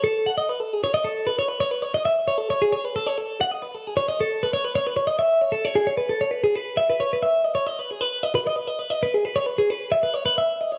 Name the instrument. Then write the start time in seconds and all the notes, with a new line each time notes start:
clean electric guitar
0.04 A4
0.26 F#5
0.38 D#5
0.49 B4
0.60 A4
0.73 G#4
0.84 C#5
0.94 D#5
1.04 A4
1.27 B4
1.39 C#5
1.48 B4
1.60 C#5
1.71 B4
1.82 C#5
1.94 D#5
2.05 E5
2.28 C#5
2.38 A4
2.50 C#5
2.62 G#4
2.73 C#5
2.85 B4
2.96 A4
3.07 C#5
3.18 A4
3.41 F#5
3.51 D#5
3.62 B4
3.74 A4
3.87 G#4
3.97 C#5
4.08 D#5
4.21 A4
4.43 B4
4.53 C#5
4.65 B4
4.75 C#5
4.87 B4
4.97 C#5
5.07 D#5
5.19 E5
5.42 C#5
5.52 A4
5.65 C#5
5.76 G#4
5.87 C#5
5.97 B4
6.09 A4
6.21 C#5
6.31 B4
6.44 G#4
6.56 B4
6.77 E5
6.90 B4
7.00 C#5
7.13 B4
7.23 E5
7.45 D#5
7.55 C#5
7.67 D#5
7.79 B4
7.91 G#4
8.01 B4
8.23 D#5
8.35 B4
8.47 D#5
8.56 B4
8.68 D#5
8.79 B4
8.90 D#5
9.03 B4
9.14 G#4
9.25 B4
9.36 C#5
9.46 B4
9.58 G#4
9.70 B4
9.92 E5
10.03 B4
10.14 C#5
10.26 B4
10.38 E5
10.61 D#5
10.72 C#5